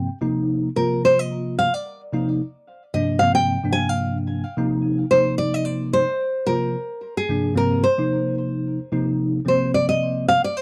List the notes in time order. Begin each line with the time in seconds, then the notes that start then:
Already playing: G5
0.21 C3 F3 A#3 D#4
0.76 C3 F3 A#3 F4 A#4
1.05 C5
1.19 D#5
1.59 F5
1.74 D5
2.13 C3 F3 A#3 D#4
2.94 G2 C3 F3 A#3 D4 D#5
3.19 G2 C3 F3 A#3 C4 F5
3.35 G5
3.63 G2 C3 F3 A#3 D4
3.73 G#5
3.89 F5
4.57 C3 F3 A#3 D#4
5.11 C3 F3 A#3 D#4 C5
5.38 D5
5.54 D#5
5.65 D5
5.93 C5
6.46 C3 F3 A#3 F4 A#4
7.17 G#4
7.29 G2 C3 F3 A#3 D4
7.54 G2 C3 F3 A#3 C4 A#4
7.83 C5
7.97 C3 F3 A#3 D#4
8.92 C3 F3 A#3 D#4
9.45 C3 F3 A#3 C4 C5
9.74 D5
9.89 D#5
10.28 F5
10.44 D5
10.57 C5